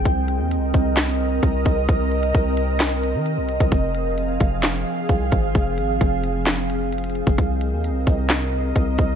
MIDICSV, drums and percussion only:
0, 0, Header, 1, 2, 480
1, 0, Start_track
1, 0, Key_signature, -3, "minor"
1, 0, Tempo, 458015
1, 57, Time_signature, 4, 2, 24, 8
1, 9593, End_track
2, 0, Start_track
2, 0, Title_t, "Drums"
2, 56, Note_on_c, 9, 42, 77
2, 57, Note_on_c, 9, 36, 118
2, 161, Note_off_c, 9, 42, 0
2, 162, Note_off_c, 9, 36, 0
2, 296, Note_on_c, 9, 42, 74
2, 401, Note_off_c, 9, 42, 0
2, 539, Note_on_c, 9, 42, 82
2, 643, Note_off_c, 9, 42, 0
2, 775, Note_on_c, 9, 42, 91
2, 777, Note_on_c, 9, 36, 98
2, 880, Note_off_c, 9, 42, 0
2, 882, Note_off_c, 9, 36, 0
2, 1017, Note_on_c, 9, 38, 117
2, 1018, Note_on_c, 9, 39, 92
2, 1021, Note_on_c, 9, 42, 64
2, 1121, Note_off_c, 9, 38, 0
2, 1122, Note_off_c, 9, 39, 0
2, 1125, Note_off_c, 9, 42, 0
2, 1495, Note_on_c, 9, 42, 77
2, 1497, Note_on_c, 9, 36, 96
2, 1600, Note_off_c, 9, 42, 0
2, 1602, Note_off_c, 9, 36, 0
2, 1734, Note_on_c, 9, 42, 73
2, 1737, Note_on_c, 9, 36, 93
2, 1839, Note_off_c, 9, 42, 0
2, 1842, Note_off_c, 9, 36, 0
2, 1976, Note_on_c, 9, 42, 76
2, 1977, Note_on_c, 9, 36, 118
2, 2081, Note_off_c, 9, 42, 0
2, 2082, Note_off_c, 9, 36, 0
2, 2217, Note_on_c, 9, 42, 44
2, 2322, Note_off_c, 9, 42, 0
2, 2337, Note_on_c, 9, 42, 76
2, 2442, Note_off_c, 9, 42, 0
2, 2458, Note_on_c, 9, 36, 103
2, 2459, Note_on_c, 9, 42, 82
2, 2563, Note_off_c, 9, 36, 0
2, 2564, Note_off_c, 9, 42, 0
2, 2695, Note_on_c, 9, 42, 92
2, 2800, Note_off_c, 9, 42, 0
2, 2937, Note_on_c, 9, 38, 115
2, 2938, Note_on_c, 9, 39, 95
2, 2941, Note_on_c, 9, 42, 64
2, 3042, Note_off_c, 9, 38, 0
2, 3043, Note_off_c, 9, 39, 0
2, 3046, Note_off_c, 9, 42, 0
2, 3180, Note_on_c, 9, 42, 80
2, 3285, Note_off_c, 9, 42, 0
2, 3416, Note_on_c, 9, 42, 79
2, 3520, Note_off_c, 9, 42, 0
2, 3654, Note_on_c, 9, 42, 68
2, 3759, Note_off_c, 9, 42, 0
2, 3777, Note_on_c, 9, 36, 99
2, 3882, Note_off_c, 9, 36, 0
2, 3896, Note_on_c, 9, 42, 77
2, 3897, Note_on_c, 9, 36, 118
2, 4001, Note_off_c, 9, 42, 0
2, 4002, Note_off_c, 9, 36, 0
2, 4135, Note_on_c, 9, 42, 70
2, 4240, Note_off_c, 9, 42, 0
2, 4378, Note_on_c, 9, 42, 80
2, 4483, Note_off_c, 9, 42, 0
2, 4614, Note_on_c, 9, 42, 91
2, 4617, Note_on_c, 9, 36, 99
2, 4719, Note_off_c, 9, 42, 0
2, 4721, Note_off_c, 9, 36, 0
2, 4856, Note_on_c, 9, 38, 116
2, 4857, Note_on_c, 9, 39, 91
2, 4860, Note_on_c, 9, 42, 63
2, 4961, Note_off_c, 9, 38, 0
2, 4962, Note_off_c, 9, 39, 0
2, 4964, Note_off_c, 9, 42, 0
2, 5335, Note_on_c, 9, 42, 75
2, 5337, Note_on_c, 9, 36, 94
2, 5440, Note_off_c, 9, 42, 0
2, 5441, Note_off_c, 9, 36, 0
2, 5573, Note_on_c, 9, 42, 72
2, 5577, Note_on_c, 9, 36, 97
2, 5677, Note_off_c, 9, 42, 0
2, 5682, Note_off_c, 9, 36, 0
2, 5816, Note_on_c, 9, 42, 79
2, 5817, Note_on_c, 9, 36, 117
2, 5921, Note_off_c, 9, 36, 0
2, 5921, Note_off_c, 9, 42, 0
2, 6055, Note_on_c, 9, 42, 76
2, 6160, Note_off_c, 9, 42, 0
2, 6298, Note_on_c, 9, 36, 98
2, 6298, Note_on_c, 9, 42, 82
2, 6402, Note_off_c, 9, 36, 0
2, 6403, Note_off_c, 9, 42, 0
2, 6535, Note_on_c, 9, 42, 90
2, 6640, Note_off_c, 9, 42, 0
2, 6777, Note_on_c, 9, 38, 117
2, 6778, Note_on_c, 9, 39, 94
2, 6781, Note_on_c, 9, 42, 63
2, 6882, Note_off_c, 9, 38, 0
2, 6883, Note_off_c, 9, 39, 0
2, 6886, Note_off_c, 9, 42, 0
2, 7020, Note_on_c, 9, 42, 76
2, 7125, Note_off_c, 9, 42, 0
2, 7258, Note_on_c, 9, 42, 79
2, 7318, Note_off_c, 9, 42, 0
2, 7318, Note_on_c, 9, 42, 66
2, 7378, Note_off_c, 9, 42, 0
2, 7378, Note_on_c, 9, 42, 56
2, 7437, Note_off_c, 9, 42, 0
2, 7437, Note_on_c, 9, 42, 44
2, 7495, Note_on_c, 9, 46, 72
2, 7498, Note_off_c, 9, 42, 0
2, 7498, Note_on_c, 9, 42, 43
2, 7599, Note_off_c, 9, 46, 0
2, 7603, Note_off_c, 9, 42, 0
2, 7617, Note_on_c, 9, 36, 99
2, 7618, Note_on_c, 9, 42, 68
2, 7722, Note_off_c, 9, 36, 0
2, 7723, Note_off_c, 9, 42, 0
2, 7737, Note_on_c, 9, 36, 113
2, 7737, Note_on_c, 9, 42, 75
2, 7842, Note_off_c, 9, 36, 0
2, 7842, Note_off_c, 9, 42, 0
2, 7977, Note_on_c, 9, 42, 73
2, 8082, Note_off_c, 9, 42, 0
2, 8219, Note_on_c, 9, 42, 82
2, 8324, Note_off_c, 9, 42, 0
2, 8456, Note_on_c, 9, 42, 89
2, 8458, Note_on_c, 9, 36, 99
2, 8560, Note_off_c, 9, 42, 0
2, 8562, Note_off_c, 9, 36, 0
2, 8697, Note_on_c, 9, 38, 114
2, 8698, Note_on_c, 9, 39, 96
2, 8701, Note_on_c, 9, 42, 65
2, 8802, Note_off_c, 9, 38, 0
2, 8803, Note_off_c, 9, 39, 0
2, 8806, Note_off_c, 9, 42, 0
2, 9176, Note_on_c, 9, 42, 78
2, 9178, Note_on_c, 9, 36, 96
2, 9280, Note_off_c, 9, 42, 0
2, 9282, Note_off_c, 9, 36, 0
2, 9414, Note_on_c, 9, 42, 70
2, 9418, Note_on_c, 9, 36, 99
2, 9519, Note_off_c, 9, 42, 0
2, 9523, Note_off_c, 9, 36, 0
2, 9593, End_track
0, 0, End_of_file